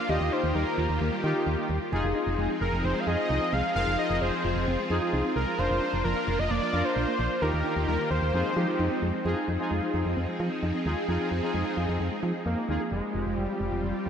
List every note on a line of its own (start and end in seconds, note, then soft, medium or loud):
0.00 1.89 A#3 medium
0.00 1.89 F4 medium
0.00 0.11 F5 loud
0.09 0.19 D#2 loud
0.09 1.91 D#3 medium
0.09 0.64 D#4 medium
0.09 0.64 F4 medium
0.09 1.91 G4 medium
0.09 0.20 G4 loud
0.09 0.64 G4 medium
0.09 0.34 D#5 loud
0.21 0.30 D#2 loud
0.21 0.31 F4 medium
0.32 0.43 D#4 medium
0.32 0.55 C5 loud
0.44 0.53 D#2 loud
0.55 0.64 D#2 loud
0.55 0.66 G3 medium
0.55 1.20 A#4 medium
0.66 0.77 G4 medium
0.78 0.87 D#2 loud
0.78 0.88 F4 medium
0.89 0.99 D#2 medium
1.01 1.10 D#2 loud
1.01 1.11 A#3 medium
1.12 1.23 G3 medium
1.24 1.33 D#3 loud
1.24 1.65 D#4 medium
1.24 1.65 F4 medium
1.24 1.34 G4 medium
1.24 1.65 G4 loud
1.35 1.46 F4 medium
1.47 1.56 D#2 loud
1.47 1.57 D#4 medium
1.58 1.69 A#3 medium
1.69 1.79 D#2 medium
1.69 1.80 G3 medium
1.92 2.02 F1 loud
1.92 5.55 F3 medium
1.92 5.55 C4 medium
1.92 3.74 D#4 medium
1.92 2.47 D#4 medium
1.92 2.47 F4 medium
1.92 5.55 G#4 medium
1.92 2.03 G#4 loud
1.92 2.47 G#4 loud
2.04 2.13 F1 loud
2.04 2.14 F4 medium
2.15 2.26 D#4 medium
2.27 2.36 F1 loud
2.38 2.48 F1 loud
2.38 2.49 G#3 medium
2.50 2.60 G#4 medium
2.61 2.71 F1 loud
2.61 2.72 F4 medium
2.61 2.86 A#4 medium
2.73 2.82 F1 medium
2.84 2.93 F1 loud
2.84 2.94 C4 medium
2.84 3.01 C5 loud
2.95 3.06 G#3 medium
3.00 3.08 F5 medium
3.07 3.16 F2 medium
3.07 3.48 D#4 medium
3.07 3.48 F4 medium
3.07 3.48 G#4 medium
3.07 3.17 G#4 medium
3.07 3.54 D#5 loud
3.18 3.29 F4 medium
3.30 3.39 C2 loud
3.30 3.40 D#4 medium
3.41 3.52 C4 medium
3.53 3.62 C2 loud
3.53 3.63 G#3 medium
3.53 3.75 F5 loud
3.76 3.85 F1 loud
3.76 4.30 D#4 medium
3.76 4.30 F4 medium
3.76 8.30 F4 medium
3.76 3.86 G#4 loud
3.76 4.30 A#4 medium
3.76 3.97 F5 loud
3.87 3.97 F1 loud
3.87 3.98 F4 medium
3.98 4.09 D#4 medium
3.98 4.23 D#5 loud
4.10 4.19 F1 loud
4.21 4.31 F1 loud
4.21 4.32 G#3 medium
4.21 4.90 C5 medium
4.33 4.43 G#4 medium
4.44 4.54 F1 loud
4.44 4.55 F4 medium
4.56 4.65 F1 loud
4.67 4.77 F1 loud
4.67 4.78 C4 medium
4.79 4.89 G#3 medium
4.90 5.00 F2 loud
4.90 5.31 D#4 medium
4.90 5.31 F4 medium
4.90 5.31 G#4 loud
4.90 5.01 G#4 medium
5.02 5.12 F4 medium
5.13 5.23 C2 medium
5.13 5.24 D#4 medium
5.25 5.35 C4 medium
5.36 5.45 C2 loud
5.36 5.46 G#3 medium
5.36 5.60 A#4 medium
5.59 5.68 F1 loud
5.59 7.40 A#3 medium
5.59 6.14 D4 medium
5.59 7.40 D4 medium
5.59 6.14 F4 medium
5.59 6.14 A#4 medium
5.59 6.04 C5 loud
5.59 5.69 F5 loud
5.70 5.80 F1 loud
5.70 5.81 F4 medium
5.82 5.92 D4 medium
5.93 6.03 F1 medium
6.05 6.14 F1 loud
6.05 6.15 F3 medium
6.05 6.40 A#4 loud
6.16 6.27 F5 medium
6.28 6.37 F1 loud
6.28 6.38 F4 medium
6.39 6.48 F1 loud
6.39 6.52 D#5 loud
6.50 6.60 F1 loud
6.50 6.61 A#3 medium
6.50 6.86 D5 loud
6.62 6.72 F3 medium
6.73 6.83 F2 loud
6.73 7.14 D4 medium
6.73 7.14 F4 medium
6.73 7.14 A#4 medium
6.73 6.84 F5 medium
6.85 6.95 F4 medium
6.85 7.41 C5 loud
6.96 7.06 A#1 loud
6.96 7.07 D4 medium
7.08 7.18 A#3 medium
7.19 7.29 A#1 loud
7.19 7.30 F3 medium
7.42 7.51 D#2 loud
7.42 8.33 D#3 medium
7.42 8.33 A#3 medium
7.42 7.97 D#4 medium
7.42 7.97 F4 medium
7.42 7.52 G4 loud
7.42 8.33 G4 medium
7.42 7.97 G4 medium
7.42 7.85 A#4 loud
7.53 7.63 D#2 loud
7.53 7.64 F4 medium
7.65 7.75 D#4 medium
7.76 7.86 D#2 loud
7.88 7.97 D#2 loud
7.88 7.98 G3 medium
7.88 8.09 A#4 medium
7.99 8.10 G4 medium
8.11 8.20 D#2 loud
8.11 8.21 F4 medium
8.11 8.98 C5 loud
8.22 8.32 D#2 medium
8.34 8.43 F2 loud
8.34 9.24 F3 medium
8.34 9.24 G#3 medium
8.34 8.44 C4 medium
8.34 9.24 C4 medium
8.34 9.24 D#4 medium
8.34 8.52 D#4 medium
8.34 8.52 F4 medium
8.34 8.52 G#4 medium
8.45 8.56 G#3 medium
8.57 8.66 F3 loud
8.57 8.98 D#4 medium
8.57 8.98 F4 medium
8.57 8.98 G4 medium
8.57 8.67 G#4 medium
8.68 8.78 F4 medium
8.79 8.89 F2 medium
8.79 8.90 D#4 medium
8.91 9.01 C4 medium
9.02 9.12 F2 medium
9.02 9.13 G#3 medium
9.25 9.35 F2 loud
9.25 12.88 F3 medium
9.25 12.88 C4 medium
9.25 12.88 D#4 medium
9.25 9.46 D#4 medium
9.25 9.46 F4 medium
9.25 12.88 G#4 medium
9.25 9.46 G#4 loud
9.25 9.36 G#4 loud
9.37 9.47 F4 medium
9.48 9.58 F2 loud
9.48 9.59 D#4 medium
9.60 9.70 C4 medium
9.60 10.14 D#4 medium
9.60 10.14 F4 medium
9.60 10.14 G#4 medium
9.71 9.81 F2 medium
9.71 9.82 G#3 medium
9.83 9.93 G#4 medium
9.94 10.03 F2 loud
9.94 10.04 F4 medium
10.05 10.15 F2 medium
10.05 10.16 D#4 medium
10.17 10.26 F2 loud
10.17 10.27 C4 medium
10.28 10.39 G#3 medium
10.40 10.49 F3 loud
10.40 10.50 G#4 medium
10.63 10.72 F2 medium
10.63 10.73 D#4 medium
10.74 10.85 C4 medium
10.86 10.95 D#2 loud
10.86 10.96 G#3 medium
10.86 10.99 D#4 medium
10.86 10.99 F4 medium
10.86 10.99 G#4 loud
10.97 11.07 G#4 medium
11.08 11.18 F2 loud
11.08 11.29 D#4 medium
11.08 11.29 F4 medium
11.08 11.29 G#4 loud
11.08 11.19 G#4 loud
11.20 11.30 F4 medium
11.31 11.41 F2 loud
11.31 11.42 D#4 medium
11.43 11.53 C4 medium
11.43 11.98 D#4 medium
11.43 11.98 F4 medium
11.43 11.98 G#4 loud
11.54 11.64 F2 medium
11.54 11.65 G#3 medium
11.66 11.76 G#4 medium
11.77 11.87 F2 loud
11.77 11.88 F4 medium
11.89 11.98 F2 loud
11.89 11.99 D#4 medium
12.00 12.10 F2 loud
12.00 12.11 C4 medium
12.12 12.22 G#3 medium
12.23 12.32 F3 loud
12.23 12.33 G#4 medium
12.46 12.55 F2 loud
12.46 12.89 A#3 medium
12.46 12.56 D#4 medium
12.57 12.68 C4 medium
12.69 12.78 D#2 medium
12.69 12.79 G#3 medium
12.69 12.82 D#4 medium
12.69 12.82 F4 medium
12.69 12.82 G#4 medium
12.80 12.91 G#4 medium
12.92 13.01 F1 loud
12.92 14.10 F3 medium
12.92 13.37 G#3 loud
12.92 14.10 C4 medium
12.92 14.10 F4 medium
12.92 14.10 G4 medium
13.14 13.24 F1 loud
13.26 13.35 F1 medium
13.37 13.47 F1 loud
13.37 13.60 G3 loud
13.60 13.70 F1 loud
13.60 14.10 G3 loud
13.72 13.81 F1 medium
13.83 13.93 F1 loud
14.06 14.10 F2 loud